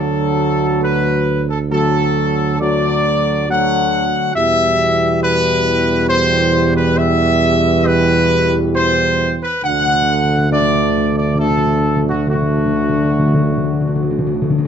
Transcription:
Already playing: D2 D3 F#3 A3 F#4 A4
0.82 B4
1.49 A4
1.70 D3 F#3 A3 F#4 A4
2.60 D3 F#3 A3 F#4 D5
3.49 D3 F#3 A3 F#4 F#5
4.35 E2 B2 E3 G3 G4 E5
5.22 B4
6.09 C5
6.76 B4
6.98 E5
7.86 B4
8.73 C5
9.42 B4
9.63 D2 D3 A3 D4 F#5
9.71 D3
9.79 D3
9.86 D3
10.01 D3
10.09 D3
10.16 D3
10.31 D3
10.38 D3
10.45 D3
10.50 D3 A3 D4 D5
10.60 D3
10.75 D3
10.89 D3
10.98 D3
11.05 D3
11.12 D3
11.17 D3 D5
11.28 D3
11.35 D3 A3
11.39 D4 A4
11.51 D3
11.57 D3
11.72 D3
11.81 D3
11.96 D3
12.04 D3 F#4
12.11 D3
12.19 D3
12.27 D3 A3 D4 F#4
12.35 D3
12.42 D3
12.50 D3
12.58 D3
12.66 D3
12.73 D3
12.81 D3
12.89 D3
12.97 D3
13.03 D3
13.12 D3
13.19 D3
13.26 D3
13.34 D3
13.42 D3
13.50 D3
13.57 D3
13.64 D3
13.73 D3
13.80 D3
13.88 D3
13.95 D3
14.03 D3
14.11 D3
14.19 D3
14.27 D3
14.34 D3
14.42 D3
14.50 D3
14.58 D3

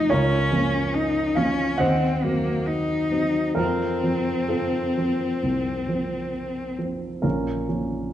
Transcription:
Already playing: F2 F3 A3 D#4 F4 A4 C5
0.10 C#2 C#4 F4 A#4 C#5
0.52 F3 A#3 C#4
0.94 D#4
1.35 F3 A#3 C#4 F5
1.78 D#2 C4 C5 D#5 F#5
2.24 F#3 A#3 C4
2.67 D#4
3.11 F#3 C4
3.55 F2 F4 A#4
3.59 C4
4.04 F3 C4
4.48 C4 F4 A4
4.97 F3 C4
5.43 C2
5.88 F3 C4
6.79 F3 C4
7.22 A#1 C#4 F4 A#4
7.69 F3 A#3 C#4

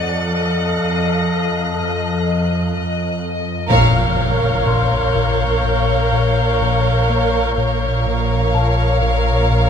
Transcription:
Already playing: F2 F3 A4 D#5 F5 F#6 A6 C#7
0.32 D#5
0.67 A#6
0.80 F2 D#5
1.29 D#5
1.76 F2 D#5
2.24 D#5
2.73 F2 D#5
3.21 D#5
3.69 A#1 A#2 A#4 C#5 F5 C#6 G6, impact
4.18 A#2
4.66 A#2 C#5 C6
5.15 A#2
5.63 A#2
6.12 A#2
6.61 A#2
7.10 A#3
7.57 A#1 A#2 A#4 C#5 F5
8.06 A#2
8.40 G#6
8.54 A#2 A5
9.02 A#2
9.50 A#2

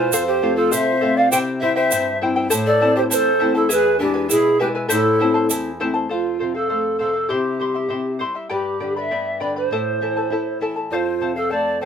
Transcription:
Already playing: B2 F4 C5
0.00 E4 B4 G#5
0.12 F2 A4 C5 F5, shaker
0.26 G4 C5
0.42 A3 C4 F4 A4 C5 F5
0.56 F4 A4 C5 F5
0.71 C3 A4 C5 E5 F5, shaker
1.01 A3 C4 F4 A4 C5 F5
1.17 C5 D5 F5
1.30 C3 E4 G4 C5 E5 G5, shaker
1.59 G3 C4 E4 C5 E5 G5
1.74 E4 C5 E5 G5
1.91 G2 E4 C5 E5 G5, shaker
2.21 G3 C4 E4 C5 E5 G5
2.36 E4 C5 G5
2.50 A2 E4 A4 C5 E5 A5, shaker
2.66 A4 D5
2.80 A3 C4 E4 C5 E5 A5
2.96 E4 G4 C5 A5
3.10 E2 E4 B4 C5 E5 A5, shaker
3.15 A4
3.39 A3 C4 E4 C5 E5 A5
3.54 E4 A4 C5 A5
3.69 E2 E4 G#4 A4 B4 E5 G#5, shaker
3.75 G#4
3.99 G#3 B3 D4 E4 G4 B4 E5 G#5
4.14 E4 B4 G#5
4.29 B2 E4 G#4 B4 E5 G#5, shaker
4.59 G#3 B3 E4 G4 B4 E5 G#5
4.75 E4 B4 G#5
4.88 A2 E4 A4 C5 E5 A5, shaker
5.20 A3 C4 E4 C5 E5 A5
5.34 E4 C5 A5
5.49 E2 E4 C5 E5 A5, shaker
5.80 A3 C4 E4 C5 E5 A5
5.94 E4 C5 A5
6.09 F2 F4 A4 C5 F5
6.39 C3 A4 C5 F5
6.55 A4 C5 F5
6.69 A3 A4 C5 F5
6.99 C3 A4 C5 F5
7.14 C5 F5
7.29 C3 E4 G4 C5 E5 C6
7.60 G3 E4 C5 E5 C6
7.74 E4 E5 C6
7.89 C3 E4 C5 E5 C6
8.19 G3 E4 C5 E5 C6
8.35 E4 E5 C6
8.50 G2 G4 B4 D5 G5 B5
8.80 D3 B4 D5 G5 B5
8.96 B4 D5 E5 B5
9.11 B3 B4 D5 G5 B5
9.40 D3 B4 D5 G5 B5
9.56 B4 C5 D5 B5
9.71 A2 E4 A4 C5 E5 A5
10.01 E3 E4 A4 E5 A5
10.17 E4 A4 A5
10.30 E4 A4 E5 A5
10.60 E3 E4 A4 E5 A5
10.76 E4 A4 A5
10.90 F2 F4 A4 C5 D5 F5
10.95 C5
11.21 C3 A4 C5 F5
11.36 A4 C5 F5
11.50 A3 A4 C5 D5 F5 A5
11.81 C3 A4 C5 G5

